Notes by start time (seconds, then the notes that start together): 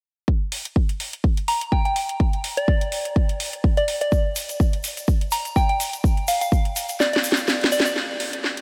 0.28 kick
0.52 open hi-hat
0.65 closed hi-hat
0.76 kick
0.89 closed hi-hat
1.00 open hi-hat
1.13 closed hi-hat
1.24 kick
1.37 closed hi-hat
1.48 A#5, open hi-hat
1.61 closed hi-hat
1.72 G5, kick
1.85 G5, closed hi-hat
1.96 open hi-hat
2.09 closed hi-hat
2.20 kick
2.33 closed hi-hat
2.44 open hi-hat
2.57 D5, closed hi-hat
2.68 kick
2.81 closed hi-hat
2.92 open hi-hat
3.05 closed hi-hat
3.16 kick
3.29 closed hi-hat
3.40 open hi-hat
3.53 closed hi-hat
3.64 kick
3.77 D5, closed hi-hat
3.88 open hi-hat
4.01 D5, closed hi-hat
4.12 kick, shaker
4.36 open hi-hat, shaker
4.49 closed hi-hat, shaker
4.60 kick, shaker
4.73 closed hi-hat
4.84 open hi-hat, shaker
4.97 closed hi-hat, shaker
5.08 kick, shaker
5.21 closed hi-hat
5.32 A#5, open hi-hat, shaker
5.45 closed hi-hat, shaker
5.56 G5, kick, shaker
5.69 G5, closed hi-hat
5.80 open hi-hat, shaker
5.93 closed hi-hat, shaker
6.04 kick, shaker
6.17 closed hi-hat
6.28 F5, open hi-hat, shaker
6.41 F5, closed hi-hat, shaker
6.52 kick, shaker
6.65 closed hi-hat
6.76 open hi-hat, shaker
6.89 closed hi-hat, shaker
7.00 D5, snare, shaker
7.13 D5, snare, closed hi-hat
7.24 open hi-hat, shaker
7.32 snare
7.36 closed hi-hat, shaker
7.48 snare, shaker
7.61 snare, closed hi-hat
7.72 D5, open hi-hat, shaker
7.80 snare
7.85 D5, closed hi-hat, shaker
7.96 snare
8.20 open hi-hat
8.33 closed hi-hat
8.44 snare
8.57 closed hi-hat